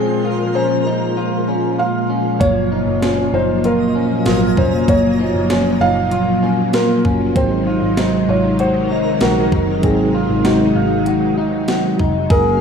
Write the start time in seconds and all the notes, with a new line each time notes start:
Already playing: A#2 F3 G#3 C4 F4 G#4 A#4 C5
0.25 F4
0.55 C#4 C5
0.86 D#4
1.17 F4
1.48 C#4
1.79 F4 F5
2.10 C#4
2.40 F#1 F#3 A#3 C#5, kick, closed hi-hat
2.72 D#4
2.87 F#1
3.02 C#4, snare, closed hi-hat
3.34 F#1 D#4 C5
3.64 F4 A#4 D#5, closed hi-hat
3.85 G#5
3.95 C#4
4.06 A#5
4.26 G#1 F4, snare, closed hi-hat
4.57 F1 C#4 C5, kick
4.88 F#1 A#3 C#5, kick, closed hi-hat
5.19 D#4
5.34 F#1
5.50 C#4, snare, closed hi-hat
5.81 F#1 D#4 F5
6.11 F4, closed hi-hat
6.43 C#4
6.73 F4 A#4, snare, closed hi-hat
7.05 F#1 C#4, kick
7.36 G#1 C3 D#3 G#3 C4 D#4 C5, kick, closed hi-hat
7.67 F4
7.82 G#1
7.97 D#4, snare, closed hi-hat
8.28 G#1 F4 C#5
8.59 F#4 A#4 C5, closed hi-hat
8.91 D#4
9.21 A#1 F#4 A#4, snare, closed hi-hat
9.52 F#1 D#4, kick
9.83 G#1 C4 G#4, kick, closed hi-hat
10.14 F4
10.29 G#1
10.45 D#4 F#4, snare, closed hi-hat
10.75 G#1 F5
11.06 F#4, closed hi-hat
11.38 D#4
11.68 F#4, snare, closed hi-hat
11.99 F1 D#4, kick
12.30 F#1 C#3 F#3 A#3 F#4 G#4 A#4 F5, kick, ride